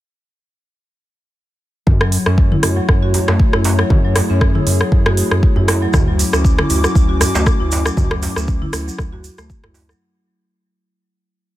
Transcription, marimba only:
2.01 F#3
2.26 C#4
2.52 E4
2.77 F#3
3.03 F#4
3.28 A3
3.53 E4
3.79 F#3
4.04 F#3
4.30 C#4
4.55 E4
4.81 F#3
5.06 F#4
5.31 A3
5.57 E4
5.82 F#3
6.08 F#3
6.33 C#4
6.58 E4
6.84 F#3
7.09 F#4
7.35 A3
7.60 E4
7.86 F#3
8.11 F#3
8.37 C#4
8.62 E4
8.88 F#3
9.13 F#4
9.38 A3
9.64 E4
9.89 F#3

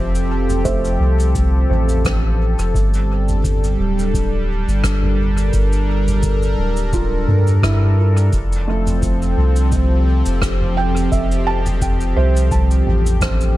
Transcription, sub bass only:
Already playing: F1
1.00 C2
1.35 C2
1.70 A1
2.59 F1
2.74 G1
3.79 D1
4.68 G1
5.53 G1
6.58 D1
7.28 G2
8.32 F1
9.37 C2
10.26 F1
11.12 F1
12.16 C2
12.51 C2
12.87 A1

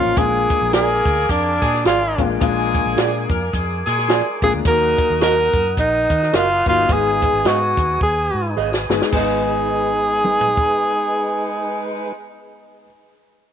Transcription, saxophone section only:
0.49 G#3 G#4
0.72 A#3 A#4
1.61 G#3 G#4
2.41 G#3 G#4
3.30 A#3 A#4
3.53 G#3 G#4
3.86 G#3 G#4
9.12 G#3 D#4 B4

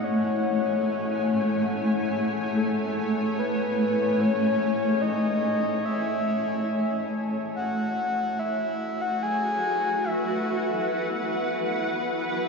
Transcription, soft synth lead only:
0.04 C#5
2.56 A4
3.39 B4
4.21 C#5
5.01 D#5
5.85 E5
7.55 F#5
8.39 E5
9.01 F#5
9.23 G#5
10.04 E5

